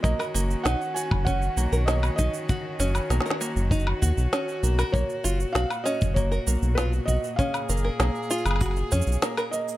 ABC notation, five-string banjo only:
X:1
M:4/4
L:1/16
Q:1/4=98
K:D#m
V:1 name="Five-string banjo"
A, A A,2 D z F2 C2 A, A A,2 D z | F2 C2 A, A A,2 D z F2 C2 A, A | A,2 E z F2 C2 A, A A,2 E z F2 | C2 A, A A,2 E z F2 C2 A, A A,2 |]